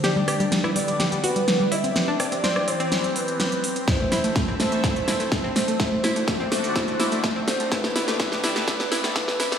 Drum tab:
HH |x-oxx-oxxxoxx-ox|x-oxx-oxxxoxxxox|x-oxx-oxxxoxx-ox|x-oxx-oxxxoxx-ox|
SD |o-r-or--o---o---|o-r-or--o---o---|o-o-o-o-o-o-o-o-|o-o-o-o-o-o-o-o-|
BD |----------------|----------------|o---o---o---o---|o---o---o---o---|

HH |x-oxx-oxxxoxx-ox|
SD |oooooooooooooooo|
BD |o---o---o---o---|